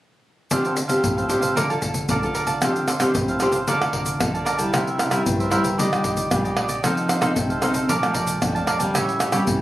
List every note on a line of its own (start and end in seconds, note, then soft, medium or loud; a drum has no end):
0.51 1.02 D3 medium
0.51 0.76 C4 medium
0.51 0.63 D4 medium
0.51 0.76 F4 soft
0.51 0.77 G4 medium
0.51 0.64 A4 medium
0.51 0.64 C5 medium
0.51 0.63 F5 medium
0.51 pandeiro medium
0.51 shaker medium
0.51 surdo medium
0.64 0.75 A4 soft
0.64 0.76 C5 soft
0.64 0.76 F5 soft
0.64 pandeiro soft
0.64 shaker soft
0.76 muted cavaquinho stroke soft
0.76 pandeiro medium
0.76 shaker medium
0.88 1.25 C4 medium
0.88 1.26 F4 medium
0.88 1.26 G4 medium
0.88 1.16 A4 soft
0.88 1.15 C5 soft
0.88 1.15 F5 medium
0.88 pandeiro medium
0.88 shaker medium
1.03 1.54 A2 medium
1.03 pandeiro medium
1.03 shaker medium
1.03 surdo medium
1.17 1.28 A4 soft
1.17 1.29 C5 soft
1.17 1.29 F5 soft
1.17 pandeiro soft
1.17 shaker soft
1.29 1.54 C4 medium
1.29 1.42 D4 soft
1.29 1.54 F4 medium
1.29 1.54 G4 medium
1.29 1.42 A4 soft
1.29 1.41 C5 soft
1.29 1.40 F5 soft
1.29 pandeiro medium
1.29 shaker medium
1.41 1.55 A4 soft
1.41 1.55 C5 soft
1.41 1.54 F5 medium
1.41 pandeiro medium
1.41 shaker medium
1.56 2.07 D3 medium
1.56 1.65 A#3 soft
1.56 1.65 F4 medium
1.56 1.65 A4 medium
1.56 1.69 A#4 medium
1.56 1.69 D5 medium
1.56 1.69 F5 medium
1.56 1.69 A5 medium
1.56 pandeiro medium
1.56 shaker medium
1.56 surdo medium
1.70 1.79 A#3 medium
1.70 1.79 F4 medium
1.70 1.79 A4 medium
1.70 1.82 D5 soft
1.70 1.82 F5 soft
1.70 1.82 A5 soft
1.70 pandeiro soft
1.70 shaker soft
1.82 2.05 A#3 medium
1.82 2.05 F4 medium
1.82 2.05 A4 medium
1.82 muted cavaquinho stroke soft
1.82 pandeiro medium
1.82 shaker medium
1.82 surdo medium
1.94 pandeiro medium
1.94 shaker medium
2.09 2.60 D3 medium
2.09 2.19 A#3 medium
2.09 2.19 F4 medium
2.09 2.19 A4 medium
2.09 2.22 A#4 medium
2.09 2.22 D5 medium
2.09 2.22 F5 medium
2.09 2.22 A5 medium
2.09 pandeiro medium
2.09 shaker medium
2.09 surdo loud
2.23 2.59 A#3 medium
2.23 2.59 F4 medium
2.23 2.59 A4 medium
2.23 2.34 D5 soft
2.23 2.35 F5 soft
2.23 2.35 A5 soft
2.23 pandeiro soft
2.23 shaker soft
2.34 2.47 A#4 medium
2.34 2.48 D5 medium
2.34 2.47 F5 medium
2.34 2.46 A5 medium
2.34 pandeiro medium
2.34 shaker medium
2.47 2.61 D5 soft
2.47 2.61 F5 soft
2.47 2.60 A5 soft
2.47 pandeiro medium
2.47 shaker medium
2.62 3.13 D3 medium
2.62 2.87 C4 medium
2.62 2.86 D4 medium
2.62 2.87 F4 medium
2.62 2.88 G4 medium
2.62 2.87 A4 medium
2.62 2.88 C5 medium
2.62 2.88 F5 medium
2.62 pandeiro medium
2.62 tamborim medium
2.62 shaker medium
2.62 surdo medium
2.76 pandeiro soft
2.76 shaker soft
2.87 2.99 D4 soft
2.87 3.00 A4 medium
2.87 3.00 C5 medium
2.87 3.01 F5 soft
2.87 pandeiro medium
2.87 tamborim medium
2.87 shaker medium
3.00 3.36 C4 medium
3.00 3.10 D4 medium
3.00 3.36 F4 medium
3.00 3.37 G4 medium
3.00 3.10 A4 medium
3.00 3.10 C5 medium
3.00 3.11 F5 medium
3.00 pandeiro medium
3.00 tamborim medium
3.00 shaker medium
3.15 3.65 A2 medium
3.15 pandeiro medium
3.15 shaker medium
3.15 surdo medium
3.28 3.40 A4 soft
3.28 3.41 C5 soft
3.28 3.41 F5 soft
3.28 pandeiro soft
3.28 shaker soft
3.40 3.57 C4 medium
3.40 3.53 D4 medium
3.40 3.57 F4 medium
3.40 3.57 G4 medium
3.40 3.54 A4 medium
3.40 3.53 C5 medium
3.40 3.52 F5 medium
3.40 pandeiro medium
3.40 tamborim medium
3.40 shaker medium
3.52 3.67 A4 soft
3.52 3.66 C5 soft
3.52 3.66 F5 soft
3.52 pandeiro soft
3.52 shaker medium
3.67 4.18 D3 medium
3.67 3.77 A#3 medium
3.67 3.77 F4 medium
3.67 3.77 A4 medium
3.67 3.92 A#4 medium
3.67 3.93 D5 medium
3.67 3.93 F5 medium
3.67 3.94 A5 medium
3.67 pandeiro medium
3.67 shaker medium
3.67 surdo medium
3.82 4.17 A#3 medium
3.82 4.17 F4 medium
3.82 4.17 A4 medium
3.82 pandeiro soft
3.82 tamborim medium
3.82 shaker soft
3.93 4.32 A#4 soft
3.93 4.32 D5 soft
3.93 4.33 F5 soft
3.93 4.33 A5 soft
3.93 pandeiro medium
3.93 surdo medium
4.06 pandeiro medium
4.06 shaker medium
4.20 4.71 D3 medium
4.20 4.46 A#3 medium
4.20 4.46 F4 medium
4.20 4.46 A4 medium
4.20 pandeiro medium
4.20 tamborim medium
4.20 shaker medium
4.20 surdo loud
4.34 4.44 D5 soft
4.34 4.45 F5 soft
4.34 4.46 A5 soft
4.34 pandeiro soft
4.34 shaker soft
4.45 4.58 A#4 medium
4.45 4.58 D5 medium
4.45 4.57 F5 medium
4.45 4.56 A5 medium
4.45 pandeiro medium
4.45 tamborim medium
4.45 shaker medium
4.57 5.08 G3 medium
4.57 5.08 A#3 medium
4.57 5.08 E4 medium
4.57 4.72 D5 soft
4.57 4.71 F5 soft
4.57 4.71 A5 soft
4.57 pandeiro medium
4.57 shaker medium
4.72 5.23 C3 medium
4.72 4.96 E4 medium
4.72 4.97 A#4 medium
4.72 4.98 C5 medium
4.72 4.98 E5 medium
4.72 pandeiro medium
4.72 tamborim medium
4.72 shaker medium
4.72 surdo medium
4.87 pandeiro soft
4.87 shaker soft
4.98 5.09 E4 soft
4.98 5.10 A#4 medium
4.98 5.10 C5 medium
4.98 5.10 E5 medium
4.98 pandeiro medium
4.98 tamborim medium
4.98 shaker medium
5.10 5.47 G3 medium
5.10 5.47 A#3 medium
5.10 5.21 E4 medium
5.10 5.47 E4 medium
5.10 5.21 A#4 medium
5.10 5.21 C5 medium
5.10 5.21 E5 medium
5.10 pandeiro medium
5.10 tamborim medium
5.10 shaker medium
5.26 5.76 G2 medium
5.26 pandeiro medium
5.26 shaker medium
5.26 surdo medium
5.39 5.50 A#4 soft
5.39 5.51 C5 soft
5.39 5.51 E5 soft
5.39 pandeiro soft
5.39 shaker soft
5.50 5.68 G3 medium
5.50 5.69 A#3 medium
5.50 5.63 E4 medium
5.50 5.69 E4 medium
5.50 5.64 A#4 medium
5.50 5.63 C5 medium
5.50 5.62 E5 medium
5.50 pandeiro medium
5.50 tamborim medium
5.50 shaker medium
5.63 5.77 A#4 soft
5.63 5.77 C5 soft
5.63 5.76 E5 soft
5.63 pandeiro medium
5.63 shaker medium
5.78 6.28 D#3 medium
5.78 5.86 G3 medium
5.78 6.03 D4 medium
5.78 5.87 D4 medium
5.78 5.87 F4 medium
5.78 6.03 G4 medium
5.78 6.04 D5 medium
5.78 6.03 D#5 medium
5.78 pandeiro medium
5.78 shaker medium
5.78 surdo medium
5.92 6.27 G3 soft
5.92 6.27 D4 medium
5.92 6.28 F4 medium
5.92 pandeiro soft
5.92 tamborim medium
5.92 shaker soft
6.04 6.43 G4 soft
6.04 6.43 D5 soft
6.04 6.43 D#5 medium
6.04 pandeiro medium
6.04 shaker medium
6.04 surdo medium
6.17 pandeiro medium
6.17 shaker medium
6.31 6.81 A#2 medium
6.31 6.65 G3 medium
6.31 6.65 D4 medium
6.31 6.66 F4 medium
6.31 pandeiro medium
6.31 tamborim medium
6.31 shaker medium
6.31 surdo medium
6.44 6.56 G4 soft
6.44 6.56 D5 soft
6.44 6.56 D#5 soft
6.44 pandeiro soft
6.44 shaker soft
6.56 6.69 D4 medium
6.56 6.69 G4 medium
6.56 6.67 D5 medium
6.56 6.68 D#5 medium
6.56 pandeiro medium
6.56 tamborim medium
6.69 6.83 G4 soft
6.69 6.82 D5 soft
6.69 6.82 D#5 soft
6.69 pandeiro medium
6.69 shaker medium
6.83 7.34 F3 medium
6.83 7.19 C4 medium
6.83 7.07 D#4 medium
6.83 7.19 D#4 medium
6.83 7.08 A4 medium
6.83 7.19 A4 medium
6.83 7.08 C5 medium
6.83 7.09 F5 medium
6.83 pandeiro medium
6.83 tamborim medium
6.83 shaker medium
6.83 surdo medium
6.97 pandeiro soft
6.97 shaker soft
7.08 7.20 D#4 soft
7.08 7.20 A4 soft
7.08 7.21 C5 medium
7.08 7.21 F5 medium
7.08 pandeiro medium
7.08 tamborim medium
7.08 shaker medium
7.21 7.58 C4 medium
7.21 7.31 D#4 medium
7.21 7.58 D#4 medium
7.21 7.31 A4 medium
7.21 7.58 A4 medium
7.21 7.32 C5 medium
7.21 7.32 F5 medium
7.21 pandeiro medium
7.21 tamborim medium
7.21 shaker medium
7.36 7.87 C3 medium
7.36 pandeiro medium
7.36 shaker medium
7.36 surdo medium
7.50 7.61 A4 soft
7.50 7.62 C5 soft
7.50 7.62 F5 soft
7.50 pandeiro soft
7.50 shaker soft
7.61 7.87 C4 medium
7.61 7.74 D#4 medium
7.61 7.87 D#4 medium
7.61 7.74 A4 medium
7.61 7.87 A4 medium
7.61 7.73 C5 medium
7.61 7.72 F5 medium
7.61 pandeiro medium
7.61 tamborim medium
7.61 shaker medium
7.74 7.88 A4 soft
7.74 7.87 C5 soft
7.74 7.87 F5 soft
7.74 pandeiro medium
7.74 shaker medium
7.88 8.39 A#2 medium
7.88 7.97 F3 medium
7.88 7.97 A3 medium
7.88 7.97 D4 medium
7.88 8.12 A#4 medium
7.88 8.13 D5 medium
7.88 8.14 F5 medium
7.88 8.14 A5 medium
7.88 pandeiro medium
7.88 shaker medium
7.88 surdo medium
8.03 8.38 F3 medium
8.03 8.38 A3 medium
8.03 8.38 D4 medium
8.03 pandeiro soft
8.03 tamborim medium
8.03 shaker soft
8.13 8.53 A#4 soft
8.13 8.53 D5 soft
8.13 8.54 F5 soft
8.13 8.53 A5 soft
8.13 pandeiro medium
8.13 shaker medium
8.13 surdo medium
8.27 pandeiro medium
8.27 shaker medium
8.42 8.92 F2 medium
8.42 8.67 F3 medium
8.42 8.67 A3 medium
8.42 8.67 D4 medium
8.42 pandeiro medium
8.42 tamborim medium
8.42 shaker medium
8.42 surdo loud
8.55 8.66 D5 soft
8.55 8.67 F5 soft
8.55 8.67 A5 medium
8.55 pandeiro soft
8.55 shaker soft
8.66 8.79 A#4 medium
8.66 8.80 D5 medium
8.66 8.79 F5 medium
8.66 8.78 A5 medium
8.66 pandeiro medium
8.66 tamborim medium
8.66 shaker medium
8.79 9.29 G3 medium
8.79 9.29 A#3 medium
8.79 9.30 C#4 medium
8.79 8.93 D5 soft
8.79 8.93 F5 soft
8.79 8.92 A5 soft
8.79 pandeiro medium
8.79 shaker medium
8.94 9.45 A2 medium
8.94 9.18 G4 medium
8.94 9.19 A4 medium
8.94 9.20 C#5 medium
8.94 9.20 E5 medium
8.94 pandeiro medium
8.94 tamborim medium
8.94 shaker medium
8.94 surdo medium
9.09 pandeiro soft
9.09 shaker soft
9.19 9.31 G4 soft
9.19 9.31 A4 soft
9.19 9.31 C#5 medium
9.19 9.32 E5 medium
9.19 pandeiro medium
9.19 tamborim medium
9.19 shaker medium
9.32 9.62 G3 medium
9.32 9.62 A#3 medium
9.32 9.62 C#4 medium
9.32 9.42 G4 medium
9.32 9.42 A4 medium
9.32 9.42 C#5 medium
9.32 9.42 E5 medium
9.32 pandeiro medium
9.32 tamborim medium
9.32 shaker medium
9.47 9.62 E3 medium
9.47 pandeiro medium
9.47 shaker medium
9.47 surdo medium